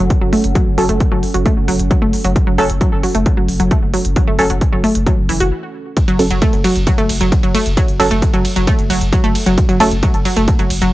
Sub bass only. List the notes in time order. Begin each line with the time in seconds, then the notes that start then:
0.21 F#1
0.44 F#1
0.67 F#1
0.78 F#1
0.89 F#1
1.12 F#1
1.34 F#1
1.57 F#1
1.68 F#1
1.79 F#1
2.02 F#1
2.24 F#1
2.47 F#1
2.58 F#1
2.70 F#1
2.92 F#1
3.15 F#1
3.37 F#1
3.48 F#1
3.60 F#1
3.82 F#1
4.05 F#1
4.28 F#1
4.39 F#1
4.50 F#1
4.73 F#1
4.95 F#1
5.18 F#1
5.29 F#1
5.40 F#1
6.08 F#1
6.19 F#1
6.30 F#1
6.53 F#1
6.76 F#1
6.98 F#1
7.09 F#1
7.21 F#1
7.43 F#1
7.66 F#1
7.88 F#1
8.00 F#1
8.11 F#1
8.34 F#1
8.56 F#1
8.79 F#1
8.90 F#1
9.01 F#1
9.24 F#1
9.46 F#1
9.69 F#1
9.80 F#1
9.91 F#1
10.14 F#1
10.37 F#1
10.59 F#1
10.70 F#1
10.82 F#1